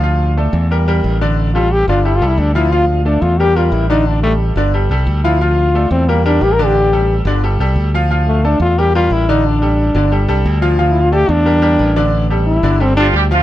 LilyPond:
<<
  \new Staff \with { instrumentName = "Grand piano" } { \time 4/4 \key d \minor \tempo 4 = 178 <f f' f''>4 <a a' d''>4 <g g' bes'>8 <g g' bes'>4 <d d' d''>8~ | <d d' d''>8 <g g' a'>4 <d d' d''>8 <g g' a'>8 <g g' a'>4 <f f' f''>8 | <f f' f''>4 <a a' d''>4 <g g' bes'>8 <g g' bes'>4 <d d' d''>8~ | <d d' d''>8 <g g' a'>4 <d d' d''>8 <g g' a'>8 <g g' a'>4 <f f' f''>8 |
<f f' f''>4 <a a' d''>4 <g g' bes'>8 <g g' bes'>4 <d d' d''>8~ | <d d' d''>8 <g g' a'>4 <d d' d''>8 <g g' a'>8 <g g' a'>4 <f f' f''>8 | <f f' f''>4 <a a' d''>4 <g g' bes'>8 <g g' bes'>4 <d d' d''>8~ | <d d' d''>8 <g g' a'>4 <d d' d''>8 <g g' a'>8 <g g' a'>4 <f f' f''>8 |
<f f' f''>4 <a a' d''>4 <g g' bes'>8 <g g' bes'>4 <d d' d''>8~ | <d d' d''>8 <g g' a'>4 <d d' d''>8 <g g' a'>8 <g g' a'>4 <f f' f''>8 | }
  \new Staff \with { instrumentName = "Trombone" } { \time 4/4 \key d \minor r1 | r8 f'8 g'8 f'8 \tuplet 3/2 { e'8 f'8 e'8 } d'8 e'8 | f'8 a8 d'8 f'8 g'8 f'8 e'8 ees'8 | d'8 a8 r2 r8 e'8 |
f'4. c'8 bes8 d'8 \tuplet 3/2 { g'8 bes'8 g'8~ } | g'4 r2. | r8 a8 d'8 f'8 g'8 f'8 e'8 ees'8 | d'2. r4 |
\tuplet 3/2 { r8 e'8 f'8 } g'8 d'2~ d'8 | r4 e'4 c'8 d'8 r4 | }
  \new Staff \with { instrumentName = "Horn section" } { \time 4/4 \key d \minor r1 | r1 | r1 | r1 |
r1 | r1 | r1 | r1 |
r1 | r2 r8 <f f'>8 <g g'>8 <f a f'>8 | }
  \new Staff \with { instrumentName = "Fingered electric bass" } { \clef bass \time 4/4 \key d \minor d,4. e,4. a,,4~ | a,,4. g,,4 c,8 d,4~ | d,4. e,4. a,,4~ | a,,4. g,,4 c,8 d,4~ |
d,4. e,4. a,,4~ | a,,4. g,,4 c,8 d,4~ | d,4. e,4. a,,4~ | a,,4. g,,4 c,8 d,4~ |
d,4. e,4. a,,4~ | a,,4. g,,4. d,4 | }
>>